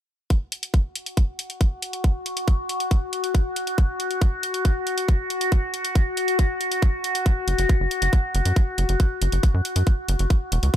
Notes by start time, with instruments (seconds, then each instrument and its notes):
0.30 synth drone F#4, kick, closed hi-hat
0.52 closed hi-hat
0.63 closed hi-hat
0.74 kick, closed hi-hat
0.95 closed hi-hat
1.06 closed hi-hat
1.17 kick, closed hi-hat
1.39 closed hi-hat
1.50 closed hi-hat
1.61 kick, closed hi-hat
1.82 closed hi-hat
1.93 closed hi-hat
2.04 kick, closed hi-hat
2.26 closed hi-hat
2.37 closed hi-hat
2.48 kick, closed hi-hat
2.69 closed hi-hat
2.80 closed hi-hat
2.91 kick, closed hi-hat
3.13 closed hi-hat
3.24 closed hi-hat
3.35 kick, closed hi-hat
3.56 closed hi-hat
3.67 closed hi-hat
3.78 kick, closed hi-hat
4.00 closed hi-hat
4.11 closed hi-hat
4.22 kick, closed hi-hat
4.43 closed hi-hat
4.54 closed hi-hat
4.65 kick, closed hi-hat
4.87 closed hi-hat
4.98 closed hi-hat
5.08 kick, closed hi-hat
5.30 closed hi-hat
5.41 closed hi-hat
5.52 kick, closed hi-hat
5.74 closed hi-hat
5.85 closed hi-hat
5.95 kick, closed hi-hat
6.17 closed hi-hat
6.28 closed hi-hat
6.39 kick, closed hi-hat
6.61 closed hi-hat
6.72 closed hi-hat
6.82 kick, closed hi-hat
7.04 closed hi-hat
7.15 closed hi-hat
7.26 kick, closed hi-hat
7.48 analog synth bass F#1, closed hi-hat
7.58 analog synth bass F#1, closed hi-hat
7.69 kick, closed hi-hat
7.80 analog synth bass F#1
7.91 closed hi-hat
8.02 analog synth bass F#1, closed hi-hat
8.13 kick, closed hi-hat
8.35 analog synth bass F#1, closed hi-hat
8.45 analog synth bass F#2, closed hi-hat
8.56 kick, closed hi-hat
8.78 analog synth bass F#1, closed hi-hat
8.89 analog synth bass F#1, closed hi-hat
9.00 kick, closed hi-hat
9.22 analog synth bass F#1, closed hi-hat
9.32 analog synth bass F#1, closed hi-hat
9.43 kick, closed hi-hat
9.54 analog synth bass F#2
9.65 closed hi-hat
9.76 analog synth bass F#2, closed hi-hat
9.87 kick, closed hi-hat
10.08 analog synth bass F#1, closed hi-hat
10.19 analog synth bass F#1, closed hi-hat
10.30 kick, closed hi-hat
10.52 analog synth bass E1, closed hi-hat
10.63 analog synth bass C#2, closed hi-hat